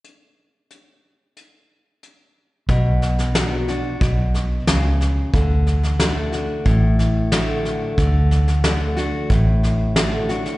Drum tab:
HH |x---x---x---x---|----p-------p---|----p-------p---|----p-------p---|
SD |----------------|o-ooo-o-o-o-o-o-|o-ooo-o-o-o-o-o-|o-ooo-o-o-o-o-oo|
BD |----------------|o-------o-------|o-------o-------|o-------o-------|